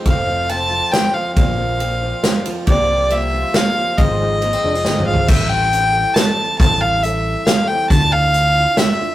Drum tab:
CC |------------------|------------------|------------------|------------------|
RD |x-----x-----x-----|x-----x-----x--x--|x-----x-----x-----|x-----x-----------|
HH |------------------|------------------|------------------|------------------|
SD |------------o-----|------------o-----|------------o-----|------------o-----|
T2 |------------------|------------------|------------------|--------------o---|
FT |------------------|------------------|------------------|----------------o-|
BD |o-----------------|o-----------------|o-----------------|o-----------------|

CC |x-----------------|------------------|------------------|
RD |------------------|------------------|------------------|
HH |------x-----x-----|x-----x-----x-----|x-----x-----x-----|
SD |------------o-----|------------o-----|------------o-----|
T2 |------------------|------------------|------------------|
FT |------------------|------------------|------------------|
BD |o-----------------|o-----------------|o-----------------|